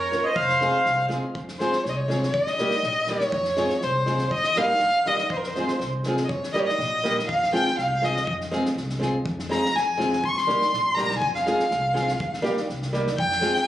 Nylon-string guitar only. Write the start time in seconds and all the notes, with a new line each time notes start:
0.11 A#3 C#4 F4 A#4
0.61 G#3 C4 F4 G#4
1.08 G#3 C4 F4 G#4
1.60 G#3 C4 F4 G#4
2.08 G#3 C4 F4 G#4
2.59 G3 A#3 D#4 G4
3.08 G3 A#3 D#4 G4
3.57 G#3 C4 F4 G#4
4.06 G#3 C4 F4 G#4
4.57 G3 A#3 D#4 G4
5.06 G3 A#3 D#4 G4
5.56 G#3 C4 F4 G#4
6.06 G#3 C4 F4 G#4
6.54 G3 A#3 D#4 G4
7.03 G3 A#3 D#4 G4
7.53 G#3 C4 F4 G#4
8.02 G#3 C4 F4 G#4
8.51 G#3 C4 F4 G#4
8.99 G#3 C4 F4 G#4
9.49 G#3 C4 F4 G#4
9.97 G#3 C4 F4 G#4
10.47 G3 A#3 D#4 G4
10.97 G3 A#3 D#4 G4
11.46 G#3 C4 F4 G#4
11.94 G#3 C4 F4 G#4
12.42 G3 A#3 D#4 G4
12.93 G3 A#3 D#4 G4
13.41 G#3 C4 F4 G#4